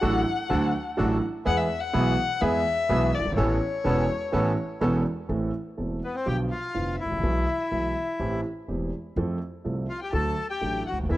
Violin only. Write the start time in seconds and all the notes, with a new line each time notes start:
Already playing: F#5
1.47 F#5
1.57 E5
1.81 F#5
2.42 E5
3.15 D5
3.38 C#5
6.05 B4
6.18 C5
6.28 G5
6.53 F5
7.01 E5
9.90 F5
10.02 G5
10.13 A5
10.50 G5
10.86 F#5
11.11 E5